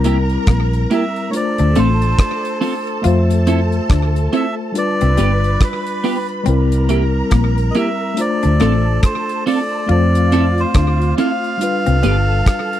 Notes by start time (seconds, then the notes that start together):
Already playing: C2 G3 C4 E4 A#4 A#5
0.04 A#3 E4 G4, closed hi-hat
0.30 closed hi-hat
0.47 A#1 A#3, kick, cross-stick, closed hi-hat
0.73 closed hi-hat
0.90 A#3 E4 G4 E5, closed hi-hat
1.16 closed hi-hat
1.30 A3 D4 A4 C#5 A5, closed hi-hat
1.34 F4 C5 D5
1.58 D2 D4, closed hi-hat
1.75 A1 A3 C4 F4 A4 C5, closed hi-hat
2.02 closed hi-hat
2.18 kick, cross-stick, closed hi-hat
2.45 closed hi-hat
2.61 C4 F4 A4, open hi-hat
2.87 closed hi-hat
3.02 F2 A3 F4 A4 E5 A5, closed hi-hat
3.07 C5
3.30 closed hi-hat
3.47 C4 E4 A4, closed hi-hat
3.72 closed hi-hat
3.90 D2 D4, kick, cross-stick, closed hi-hat
4.16 closed hi-hat
4.33 C4 E4 A4 E5, closed hi-hat
4.72 G3 D4 F4 B4 B5, closed hi-hat
4.78 B4 D5
5.01 C2 C4, closed hi-hat
5.17 G1 G3 B3 F4 G4, closed hi-hat
5.44 closed hi-hat
5.61 B4, kick, cross-stick, closed hi-hat
5.87 closed hi-hat
6.04 B3 F4 G4, open hi-hat
6.29 closed hi-hat
6.43 C2 G3 C4 A#4 A#5, closed hi-hat
6.48 E4 A#4
6.72 closed hi-hat
6.89 A#3 E4 G4, closed hi-hat
7.31 A#1 A#3, kick, cross-stick, closed hi-hat
7.58 closed hi-hat
7.71 D#5, closed hi-hat
7.75 A#3 E4 G4 E5
8.14 A3 D4 F4 A4 A5, closed hi-hat
8.20 C5 D5
8.43 D2 D4, closed hi-hat
8.60 A1 A3 C4 F4 A4, cross-stick, closed hi-hat
9.03 C5, kick, cross-stick, closed hi-hat
9.29 closed hi-hat
9.46 C4 F4 A4 D5, open hi-hat
9.86 F2 A3 C4 F4 F5, closed hi-hat
9.90 F4 C5 D5
10.15 closed hi-hat
10.32 C4 E4 A4, closed hi-hat
10.58 C5, closed hi-hat
10.74 D2 D4, kick, cross-stick, closed hi-hat
11.02 closed hi-hat
11.18 C4 E4 A4 F5, closed hi-hat
11.44 closed hi-hat
11.57 G3 D4 A4 A5, closed hi-hat
11.62 F4 B4
11.86 C2 C4, closed hi-hat
12.03 G1 G3 B3 F4 G4, closed hi-hat
12.46 kick, cross-stick, closed hi-hat
12.73 closed hi-hat